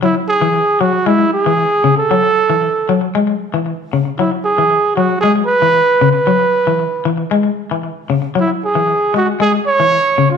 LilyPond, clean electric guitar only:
\new Staff \with { instrumentName = "Clean electric guitar" } { \clef bass \time 4/4 \key cis \minor \tempo 4 = 115 fis8 r16 e8 r16 fis8 gis8 r16 e8 r16 cis8 | fis8 r16 e8 r16 fis8 gis8 r16 e8 r16 cis8 | fis8 r16 e8 r16 fis8 gis8 r16 e8 r16 cis8 | fis8 r16 e8 r16 e8 gis8 r16 e8 r16 cis8 |
fis8 r16 e8 r16 gis8 gis8 r16 e8 r16 cis8 | }